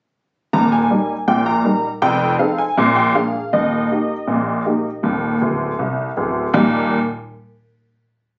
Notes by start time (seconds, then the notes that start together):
0.53 D#1 D#2 A#5
0.72 G#5
0.90 G3 D#4 A#4
1.28 A#1 A#2 G5
1.46 A#5
1.65 G3 D#4 A#4
2.02 F1 F2 G5
2.39 C4 D#4 A4 F5
2.58 G#5
2.78 A#1 A#2
2.96 G5
3.15 A#3 D4 G#4 F5
3.53 D#1 D#2 D#5
3.91 A#3 D#4 G4
4.28 A#1 A#2
4.66 A#3 D#4 G4
5.03 D#1 D#2
5.41 D1 D2
5.79 C2
6.17 D1 D2
6.54 D#2 A#2 G3 A#3 D#4 G4